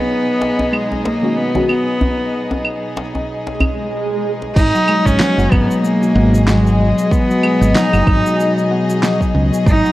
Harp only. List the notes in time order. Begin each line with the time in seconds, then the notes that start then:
4.74 F#3
4.88 G#3
5.20 B3
5.38 F#3
5.51 D#4
6.15 B3
6.47 F#3
6.79 G#3
7.29 F#3
7.43 G#3
7.75 B3
7.93 F#3
8.07 D#4
8.71 B3
9.02 F#3
9.34 G#3
9.84 F#3